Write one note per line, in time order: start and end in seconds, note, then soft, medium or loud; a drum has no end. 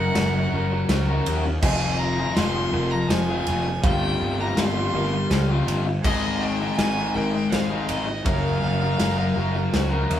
0.00 0.14 F#3 loud
0.00 0.14 C#4 medium
0.00 1.59 C#4 medium
0.00 0.16 F#4 medium
0.00 3.79 G#4 medium
0.00 0.17 A#4 medium
0.00 1.59 A#4 medium
0.00 0.14 C#5 loud
0.00 1.22 F#5 loud
0.15 0.46 F#1 medium
0.15 0.52 F#3 loud
0.15 0.36 C#4 loud
0.15 0.35 F#4 loud
0.15 0.33 A#4 loud
0.15 snare medium
0.15 ride medium
0.35 0.53 C#4 medium
0.35 0.54 F#4 medium
0.35 0.54 A#4 medium
0.52 0.82 F#1 medium
0.52 1.08 F#3 medium
0.52 0.72 C#4 medium
0.52 0.72 F#4 medium
0.52 0.89 A#4 medium
0.52 0.72 A#4 medium
0.73 muted distorted electric guitar stroke soft
0.88 1.19 C#2 medium
0.88 1.62 C5 medium
0.88 snare medium
0.88 ride medium
1.08 1.46 C#4 medium
1.08 1.45 F#4 medium
1.08 1.44 A#4 medium
1.26 1.57 D#2 medium
1.26 ride medium
1.45 muted distorted electric guitar stroke soft
1.62 2.23 F1 loud
1.62 2.37 F3 loud
1.62 2.20 C4 medium
1.62 3.81 D#4 medium
1.62 2.19 F4 loud
1.62 2.17 G#4 loud
1.62 2.36 D#5 medium
1.62 2.00 G#5 loud
1.62 kick loud
1.62 crash loud
1.98 2.37 A#5 loud
2.18 2.37 C4 medium
2.18 2.38 F4 medium
2.18 2.38 G#4 medium
2.35 2.67 F1 medium
2.35 2.73 F3 loud
2.35 2.58 C4 medium
2.35 2.55 F4 loud
2.35 2.54 G#4 loud
2.35 2.93 C6 loud
2.35 snare loud
2.35 ride medium
2.55 2.75 C4 medium
2.55 2.75 F4 medium
2.55 2.75 G#4 medium
2.72 3.03 F1 medium
2.72 3.29 F3 medium
2.72 2.94 C4 medium
2.72 3.09 A#4 medium
2.76 2.93 F4 medium
2.76 2.92 G#4 medium
2.91 3.11 A#5 loud
2.91 muted distorted electric guitar stroke medium
3.09 3.40 F1 medium
3.09 3.83 C5 loud
3.09 3.83 G#5 loud
3.09 snare medium
3.09 ride medium
3.29 3.67 C4 medium
3.29 3.66 F4 medium
3.29 3.66 G#4 medium
3.47 3.78 F1 medium
3.47 ride medium
3.67 muted distorted electric guitar stroke medium
3.82 4.14 G1 medium
3.82 4.57 G3 medium
3.82 6.01 F4 medium
3.82 4.57 F5 loud
3.82 4.42 G5 loud
3.82 kick loud
3.82 ride medium
3.86 4.42 C4 loud
3.86 4.39 F4 medium
3.86 4.39 G4 loud
4.20 4.51 G1 medium
4.39 4.58 C4 medium
4.39 4.58 F4 medium
4.39 4.59 G4 medium
4.39 4.60 A#5 loud
4.57 4.88 G1 loud
4.57 4.92 G3 loud
4.57 4.77 C4 loud
4.57 4.76 F4 loud
4.57 4.75 G4 loud
4.57 5.68 C6 loud
4.57 snare loud
4.57 ride medium
4.76 4.93 C4 medium
4.76 4.94 F4 medium
4.76 4.95 G4 medium
4.93 5.24 G1 medium
4.93 5.49 G3 medium
4.93 5.13 C4 medium
4.93 5.12 F4 medium
4.93 5.12 G4 medium
4.93 5.31 A#4 medium
5.13 muted distorted electric guitar stroke medium
5.30 5.61 C#2 medium
5.30 6.04 C5 medium
5.30 snare medium
5.30 ride medium
5.49 5.86 C4 medium
5.49 5.86 F4 medium
5.49 5.86 G4 medium
5.67 5.98 G1 loud
5.67 ride medium
5.87 muted distorted electric guitar stroke soft
6.02 6.66 G#1 loud
6.02 6.77 G#3 medium
6.02 6.62 C4 medium
6.02 6.60 D#4 medium
6.02 8.22 G#4 medium
6.02 6.42 D#5 loud
6.02 6.78 D#5 medium
6.02 kick loud
6.02 crash loud
6.07 6.59 G#4 loud
6.41 6.78 G5 loud
6.60 6.79 C4 medium
6.60 6.79 D#4 medium
6.60 6.80 G#4 medium
6.77 7.09 G#1 medium
6.77 7.13 G#3 loud
6.77 6.98 C4 loud
6.77 6.97 D#4 loud
6.77 7.16 G#5 loud
6.77 snare medium
6.77 ride medium
6.81 6.96 G#4 loud
6.97 7.14 C4 medium
6.97 7.15 D#4 medium
6.97 7.16 G#4 medium
7.14 7.46 G#1 loud
7.14 7.70 G#3 medium
7.14 7.34 C4 medium
7.14 7.33 D#4 loud
7.14 7.32 G#4 medium
7.14 7.52 A#4 medium
7.14 7.53 G5 loud
7.34 muted distorted electric guitar stroke medium
7.51 7.83 G#1 medium
7.51 8.25 C5 medium
7.51 7.91 F5 loud
7.51 snare loud
7.51 ride medium
7.70 8.07 C4 medium
7.70 8.06 D#4 medium
7.70 8.06 G#4 medium
7.89 8.20 G#1 medium
7.89 8.25 D#5 medium
7.89 ride medium
8.07 muted distorted electric guitar stroke medium
8.25 8.56 F#1 loud
8.25 8.98 F#3 medium
8.25 8.83 C#4 loud
8.25 8.81 F#4 loud
8.25 10.20 G#4 medium
8.25 8.80 A#4 medium
8.25 8.99 C#5 loud
8.25 10.06 F5 loud
8.25 kick loud
8.25 ride medium
8.63 8.93 F#1 loud
8.81 8.99 C#4 medium
8.81 8.99 F#4 medium
8.81 9.00 A#4 medium
8.99 9.30 F#1 medium
8.99 9.35 F#3 loud
8.99 9.19 C#4 loud
8.99 9.18 F#4 loud
8.99 9.16 A#4 loud
8.99 snare medium
8.99 ride medium
9.18 9.36 C#4 medium
9.18 9.37 F#4 medium
9.18 9.37 A#4 medium
9.36 9.67 F#1 medium
9.36 9.91 F#3 medium
9.36 9.55 C#4 medium
9.36 9.55 F#4 medium
9.36 9.73 A#4 medium
9.36 9.55 A#4 medium
9.56 muted distorted electric guitar stroke medium
9.72 10.04 C#2 medium
9.72 10.20 C5 medium
9.72 snare medium
9.72 ride medium
9.91 10.20 C#4 medium
9.91 10.20 F#4 medium
9.91 10.20 A#4 medium
10.10 10.20 D#2 loud
10.10 ride medium